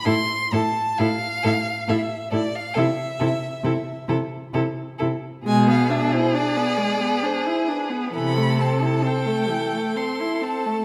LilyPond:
<<
  \new Staff \with { instrumentName = "Violin" } { \time 3/4 \key a \minor \tempo 4 = 66 c'''8 a''8 f''4 e''8 d''16 f''16 | e''4. r4. | gis''16 f''16 e''16 c''16 d''4 c''8 b'8 | b''8 a''8 g''4 c'''8 a''8 | }
  \new Staff \with { instrumentName = "Violin" } { \time 3/4 \key a \minor a'8 a'8 a'8 a'8 a'8 a'8 | a'8 a'8 a'8 a'8 a'8 a'8 | gis'2. | a'2. | }
  \new Staff \with { instrumentName = "Viola" } { \time 3/4 \key a \minor e'8 e'8 e'8 e'8 e'8 e'8 | e'8 e'8 e'8 e'8 e'8 e'8 | gis16 b16 d'16 e'16 d'16 b16 gis16 b16 d'16 e'16 d'16 b16 | e16 a16 c'16 e'16 c'16 a16 e16 a16 c'16 e'16 c'16 a16 | }
  \new Staff \with { instrumentName = "Cello" } { \clef bass \time 3/4 \key a \minor a,8 a,8 a,8 a,8 a,8 a,8 | c8 c8 c8 c8 c8 c8 | b,4 r2 | c4 r2 | }
>>